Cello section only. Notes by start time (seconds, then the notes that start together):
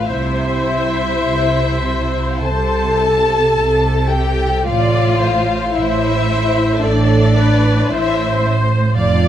0.07 C3
1.21 C3
2.44 C3
3.56 C3
4.67 A2
5.75 A2
6.82 A2
7.90 A2
8.95 F2